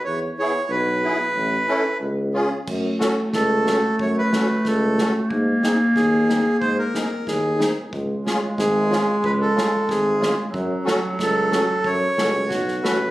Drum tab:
CC |--------|--------|x-------|--------|
SD |--------|--------|--o-o-o-|--o-o-o-|
BD |--------|--------|o---o---|o---o---|

CC |--------|--------|--------|--------|
SD |--o-o-o-|--o-o-o-|--o-o-o-|--o-o-o-|
BD |o---o---|o---o---|o---o---|o---o---|

CC |--------|--------|
SD |--o-o-o-|--o-ooo-|
BD |o---o---|o---o---|